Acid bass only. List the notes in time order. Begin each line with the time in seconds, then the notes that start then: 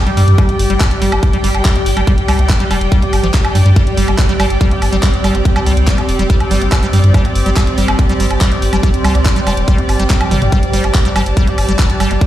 0.07 G3
0.17 G3
0.38 G3
0.49 D4
0.70 G3
0.81 G3
1.02 G3
1.12 D4
1.33 G3
1.44 G3
1.65 G3
1.76 D4
1.97 G3
2.07 G3
2.28 G3
2.39 D4
2.60 G3
2.71 G3
2.92 G3
3.02 D4
3.23 F3
3.34 G4
3.55 G3
3.66 G3
3.76 G3
3.97 G3
4.08 D4
4.29 G3
4.40 G3
4.61 G3
4.71 D4
4.92 G3
5.03 G3
5.24 G3
5.35 D4
5.56 G3
5.66 G3
5.88 G3
5.98 D4
6.19 G3
6.30 G3
6.51 G3
6.62 D4
6.83 G3
6.93 G3
7.14 G3
7.25 D4
7.46 G3
7.57 G3
7.78 G3
7.88 D4
8.09 G3
8.20 G3
8.41 G3
8.52 D4
8.73 G3
8.83 G3
9.04 G3
9.15 D4
9.36 G3
9.47 G3
9.68 G3
9.78 D4
10.00 G3
10.10 G3
10.31 G3
10.42 D4
10.52 G3
10.73 G3
10.84 D4
11.05 G3
11.16 G3
11.37 G3
11.47 D4
11.69 G3
11.79 G3
12.00 G3
12.11 D4